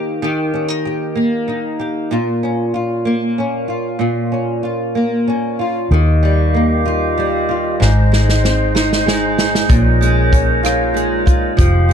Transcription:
0.00 0.21 D#3 medium
0.00 1.15 A#3 soft
0.00 0.52 D#4 soft
0.00 0.21 G4 soft
0.22 2.11 D#3 medium
0.22 0.84 G4 soft
0.54 0.68 C#4 soft
0.68 1.46 D#4 soft
0.85 1.78 G4 soft
1.15 3.05 A#3 soft
1.48 2.17 D#4 soft
1.79 2.11 G4 soft
2.11 3.98 A#2 medium
2.11 2.74 F4 medium
2.43 3.37 C#4 soft
2.74 3.68 F4 soft
3.05 4.95 A#3 soft
3.38 4.31 C#4 soft
3.68 3.99 F4 soft
3.99 5.90 A#2 medium
3.99 4.63 F4 soft
4.32 5.26 C#4 soft
4.63 5.59 F4 soft
4.95 5.97 A#3 soft
5.28 5.97 C#4 soft
5.59 5.97 F4 soft
5.91 7.77 D#2 medium
5.91 7.82 D#3 medium
5.91 7.80 G4 medium
5.91 9.67 D#5 medium
5.91 7.80 F5 medium
6.23 7.16 G3 soft
6.54 7.88 A#3 soft
6.85 7.48 F4 medium
7.17 7.87 G3 medium
7.49 7.87 F4 soft
7.79 9.66 G#1 medium
7.79 9.69 G#2 medium
7.79 11.93 D#4 medium
7.79 9.67 C5 medium
7.79 snare medium
8.12 9.06 G#3 soft
8.12 snare medium
8.29 snare medium
8.44 9.76 C4 medium
8.44 snare medium
8.75 9.37 D#4 medium
8.75 snare medium
8.93 snare medium
9.06 10.00 G#3 soft
9.06 snare medium
9.38 9.76 D#4 soft
9.38 snare medium
9.55 snare medium
9.68 11.55 A#1 medium
9.68 11.58 A#2 medium
9.68 11.56 A#4 medium
9.68 11.56 C#5 medium
9.68 kick loud
9.68 closed hi-hat medium
10.01 10.94 G#3 medium
10.01 closed hi-hat soft
10.32 11.65 C#4 medium
10.32 kick medium
10.32 closed hi-hat soft
10.63 11.25 F4 medium
10.63 cross-stick medium
10.63 closed hi-hat medium
10.94 11.88 G#3 medium
10.94 closed hi-hat soft
11.26 11.64 F4 medium
11.26 kick medium
11.26 closed hi-hat soft
11.57 11.93 F1 medium
11.57 11.93 F3 medium
11.57 11.93 G4 medium
11.57 11.93 F5 medium
11.57 kick medium
11.57 closed hi-hat medium
11.89 11.93 G#3 medium

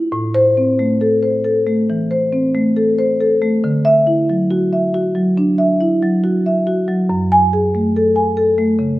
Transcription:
0.00 0.11 E4 medium
0.12 1.86 A2 medium
0.34 0.70 C5 loud
0.57 0.92 C4 medium
0.79 1.14 A3 medium
1.01 1.36 A4 medium
1.23 1.58 C5 medium
1.44 1.80 A4 medium
1.67 2.02 A3 medium
1.90 2.24 E3 medium
2.11 2.46 C5 medium
2.33 2.67 C4 medium
2.55 2.89 A3 medium
2.76 3.11 A4 medium
2.99 3.33 C5 medium
3.20 3.55 A4 medium
3.42 3.63 A3 medium
3.64 5.33 D3 medium
3.85 4.20 E5 medium
4.07 4.41 E4 medium
4.30 4.64 F#3 medium
4.51 4.85 F#4 medium
4.73 5.07 E5 medium
4.94 5.28 F#4 medium
5.15 5.50 F#3 medium
5.37 5.72 D4 medium
5.58 5.93 E5 medium
5.81 6.15 E4 medium
6.02 6.36 F#3 medium
6.24 6.58 F#4 medium
6.46 6.80 E5 medium
6.67 7.01 F#4 medium
6.88 7.09 F#3 medium
7.09 8.75 F#2 medium
7.32 7.65 G#5 loud
7.53 7.86 G#4 medium
7.75 8.08 A3 medium
7.96 8.29 A4 medium
8.16 8.49 G#5 medium
8.37 8.70 A4 medium
8.58 8.92 A3 medium
8.79 8.99 C#3 medium

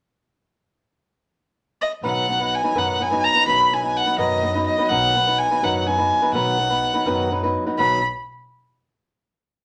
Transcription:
1.81 1.92 D#5 medium
2.01 2.49 B1 medium
2.01 2.28 B2 medium
2.01 2.28 D#3 soft
2.01 2.27 F#3 medium
2.01 2.28 B3 medium
2.01 2.28 D#4 medium
2.01 2.28 B4 medium
2.01 2.56 F#5 medium
2.28 2.40 F#3 soft
2.28 2.39 B3 soft
2.28 2.39 D#4 medium
2.28 2.39 B4 soft
2.40 2.63 F#3 soft
2.40 2.63 B3 soft
2.40 2.63 D#4 soft
2.40 2.62 B4 soft
2.55 2.80 G#5 medium
2.63 2.74 F#3 soft
2.63 2.74 B3 soft
2.63 2.74 D#4 soft
2.63 2.75 B4 soft
2.74 3.22 F#2 medium
2.74 3.00 B2 medium
2.74 3.01 D#3 medium
2.74 2.98 F#3 medium
2.74 2.99 B3 medium
2.74 2.99 D#4 medium
2.74 3.00 B4 medium
2.74 3.03 F#5 medium
2.99 3.12 F#3 soft
2.99 3.11 B3 soft
2.99 3.11 D#4 soft
2.99 3.10 B4 soft
2.99 3.26 G#5 medium
3.11 3.36 F#3 soft
3.11 3.35 B3 soft
3.11 3.34 D#4 soft
3.11 3.34 B4 soft
3.24 3.47 A#5 loud
3.35 3.46 F#3 soft
3.35 3.46 B3 soft
3.35 3.46 D#4 soft
3.35 3.47 B4 soft
3.46 3.93 B1 medium
3.46 3.72 B2 medium
3.46 3.72 D#3 soft
3.46 3.71 F#3 medium
3.46 3.71 B3 medium
3.46 3.72 D#4 medium
3.46 3.72 B4 medium
3.46 3.75 B5 medium
3.72 3.83 F#3 soft
3.72 3.82 B3 soft
3.72 3.82 D#4 soft
3.72 3.81 B4 soft
3.72 3.98 G#5 medium
3.82 4.06 F#3 soft
3.82 4.06 B3 soft
3.82 4.05 D#4 soft
3.82 4.05 B4 soft
3.97 4.17 F#5 medium
4.06 4.17 F#3 soft
4.06 4.18 B3 soft
4.06 4.17 D#4 soft
4.06 4.18 B4 soft
4.17 4.64 F#2 medium
4.17 4.43 B2 medium
4.17 4.44 D#3 medium
4.17 4.42 F#3 medium
4.17 4.42 B3 medium
4.17 4.42 D#4 medium
4.17 4.43 B4 medium
4.17 4.63 D#5 medium
4.43 4.55 F#3 medium
4.43 4.54 B3 soft
4.43 4.54 D#4 soft
4.43 4.53 B4 soft
4.55 4.79 F#3 soft
4.55 4.78 B3 soft
4.55 4.78 D#4 medium
4.55 4.77 B4 soft
4.66 4.90 D#5 medium
4.78 4.90 F#3 soft
4.78 4.89 B3 medium
4.78 4.90 D#4 soft
4.78 4.90 B4 medium
4.89 5.36 B1 medium
4.89 5.15 B2 medium
4.89 5.15 D#3 medium
4.89 5.14 F#3 medium
4.89 5.14 B3 medium
4.89 5.15 D#4 medium
4.89 5.16 B4 medium
4.89 5.39 F#5 medium
5.15 5.27 F#3 soft
5.15 5.27 B3 soft
5.15 5.27 D#4 soft
5.15 5.26 B4 medium
5.27 5.51 F#3 soft
5.27 5.50 B3 soft
5.27 5.50 D#4 soft
5.27 5.50 B4 soft
5.38 5.65 G#5 medium
5.51 5.61 F#3 soft
5.51 5.61 B3 soft
5.51 5.62 D#4 soft
5.51 5.62 B4 soft
5.61 6.07 F#2 medium
5.61 5.87 B2 medium
5.61 5.87 D#3 medium
5.61 5.86 F#3 medium
5.61 5.86 B3 medium
5.61 5.87 D#4 medium
5.61 5.87 B4 medium
5.61 5.88 F#5 medium
5.86 5.98 F#3 soft
5.86 5.98 B3 soft
5.86 5.97 D#4 soft
5.86 5.97 B4 soft
5.86 6.33 G#5 medium
5.98 6.22 F#3 soft
5.98 6.22 B3 soft
5.98 6.21 D#4 soft
5.98 6.21 B4 soft
6.22 6.33 F#3 soft
6.22 6.34 B3 soft
6.22 6.34 D#4 soft
6.22 6.33 B4 soft
6.32 6.79 B1 medium
6.32 6.59 B2 medium
6.32 6.59 D#3 medium
6.32 6.58 F#3 medium
6.32 6.58 B3 medium
6.32 6.58 D#4 medium
6.32 6.59 B4 medium
6.32 7.27 F#5 medium
6.59 6.70 F#3 soft
6.59 6.69 B3 soft
6.59 6.69 D#4 medium
6.59 6.69 B4 soft
6.70 6.94 F#3 soft
6.70 6.94 B3 soft
6.70 6.93 D#4 soft
6.70 6.92 B4 soft
6.94 7.05 F#3 soft
6.94 7.05 B3 soft
6.94 7.06 D#4 soft
6.94 7.05 B4 soft
7.05 7.52 F#2 medium
7.05 7.31 B2 medium
7.05 7.31 D#3 medium
7.05 7.29 F#3 medium
7.05 7.30 B3 medium
7.05 7.30 D#4 medium
7.05 7.31 B4 medium
7.31 7.43 F#3 soft
7.31 7.43 B3 soft
7.31 7.42 D#4 medium
7.31 7.42 B4 medium
7.43 7.67 F#3 soft
7.43 7.66 B3 soft
7.43 7.65 D#4 soft
7.43 7.65 B4 medium
7.66 7.77 F#3 soft
7.66 7.78 B3 soft
7.66 7.79 D#4 soft
7.66 7.78 B4 soft
7.78 8.02 B1 medium
7.78 7.99 B2 medium
7.78 7.99 D#3 medium
7.78 7.99 F#3 medium
7.78 7.99 B3 medium
7.78 8.00 D#4 medium
7.78 8.00 B4 medium
7.78 8.02 B5 medium

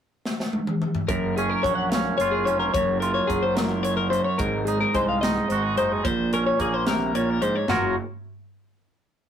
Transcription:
0.25 snare medium
0.40 snare medium
0.53 high tom medium
0.67 mid tom medium
0.82 mid tom medium
0.95 floor tom medium
1.09 1.54 F#1 medium
1.09 2.75 F#2 medium
1.09 1.37 A#4 medium
1.09 kick medium
1.09 closed hi-hat medium
1.37 1.94 C#4 medium
1.37 1.50 G#4 medium
1.37 closed hi-hat medium
1.50 1.64 A#4 medium
1.63 2.09 A#1 medium
1.63 3.28 F#3 medium
1.63 1.75 C#5 medium
1.63 kick medium
1.63 closed hi-hat medium
1.75 1.90 F#5 medium
1.90 2.17 F5 medium
1.90 snare medium
1.90 closed hi-hat medium
1.94 2.47 C#4 medium
2.18 2.46 F#1 medium
2.18 2.72 F4 soft
2.18 2.33 C#5 medium
2.18 closed hi-hat medium
2.31 2.46 G#4 medium
2.45 2.69 F1 medium
2.45 2.72 C#4 soft
2.45 2.59 C#5 medium
2.45 closed hi-hat medium
2.60 2.73 A#4 medium
2.74 3.19 F#1 medium
2.74 4.09 F#2 medium
2.74 3.00 C#5 medium
2.74 kick loud
2.74 closed hi-hat medium
3.00 4.37 F4 medium
3.00 3.14 A#4 medium
3.00 closed hi-hat medium
3.14 3.29 C#5 medium
3.27 4.19 F#1 medium
3.27 4.94 F#3 medium
3.27 3.43 G#4 medium
3.27 kick medium
3.27 closed hi-hat soft
3.43 3.56 C5 medium
3.56 3.83 A#4 medium
3.56 snare medium
3.56 closed hi-hat medium
3.83 3.96 C#5 medium
3.83 closed hi-hat medium
3.97 4.10 A#4 medium
4.10 4.39 F#2 medium
4.10 4.24 C5 medium
4.10 closed hi-hat medium
4.24 4.39 C#5 medium
4.38 4.84 G#1 medium
4.38 6.01 G#2 medium
4.38 4.65 A#4 medium
4.38 kick medium
4.38 closed hi-hat medium
4.65 5.23 D#4 medium
4.65 4.80 G#4 medium
4.65 closed hi-hat medium
4.81 4.95 A#4 medium
4.94 5.39 C2 medium
4.94 6.07 G#3 medium
4.94 5.08 C5 medium
4.94 kick medium
4.94 closed hi-hat soft
5.09 5.21 F5 medium
5.21 5.77 D#4 medium
5.21 5.49 D#5 medium
5.21 snare medium
5.21 closed hi-hat medium
5.49 5.78 G#1 medium
5.49 6.03 F#4 soft
5.49 5.63 C5 medium
5.49 closed hi-hat medium
5.63 5.77 G#4 medium
5.78 6.00 F#1 medium
5.78 6.02 D#4 soft
5.78 5.93 C5 medium
5.78 closed hi-hat soft
5.93 6.05 G#4 medium
6.04 6.50 A#1 medium
6.04 6.86 A#2 medium
6.04 6.32 C5 medium
6.04 kick medium
6.04 closed hi-hat medium
6.33 7.67 C#4 medium
6.33 6.46 A#4 medium
6.33 closed hi-hat medium
6.47 6.60 C#5 medium
6.59 7.49 A#1 medium
6.59 7.66 A#3 medium
6.59 6.74 G#4 medium
6.59 kick medium
6.59 closed hi-hat medium
6.74 6.87 C5 medium
6.87 7.15 C3 medium
6.87 7.15 A#4 medium
6.87 snare medium
6.87 closed hi-hat medium
7.15 7.41 A#2 medium
7.15 7.30 C#5 medium
7.15 closed hi-hat medium
7.30 7.42 A#4 medium
7.42 7.68 G#2 medium
7.42 7.56 C5 medium
7.42 closed hi-hat medium
7.56 7.70 C#5 medium
7.68 7.96 F#1 medium
7.68 7.94 F#2 medium
7.68 7.94 F#3 medium
7.68 7.94 F4 soft
7.68 7.95 F#4 medium
7.68 7.95 A#4 medium
7.68 7.95 C#5 soft
7.68 snare medium
7.68 floor tom medium

